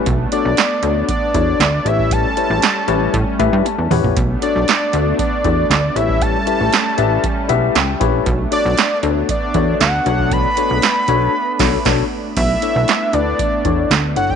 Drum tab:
CC |----------------|----------------|----------------|----------------|
HH |x-x-x-x-x-x-x-x-|x-x-x-x-x-x-x-o-|x-x-x-x-x-x-x-x-|x-x-x-x-x-x-x-x-|
CP |----x-------x---|----x-----------|----x-------x---|----x-------x---|
SD |----o-------o---|----o-----------|----o-------o---|----o-------o---|
T1 |----------------|------------o---|----------------|----------------|
T2 |----------------|--------------o-|----------------|----------------|
FT |----------------|---------------o|----------------|----------------|
BD |o-------o-o----o|o-------o-o-----|o-------o-o----o|o-------o-----o-|

CC |----------------|----------x-x---|x---------------|
HH |x-x-x-x-x-x-x-x-|x-x-x-x---------|x-x-x-x-x-x-x-x-|
CP |----x-------x---|----x-----------|----x-------x---|
SD |----o-------o---|----o-----o-o---|----o-------o---|
T1 |----------------|----------------|----------------|
T2 |----------------|----------------|----------------|
FT |----------------|----------------|----------------|
BD |o-------o-o----o|o---------o-o---|o-------o-o----o|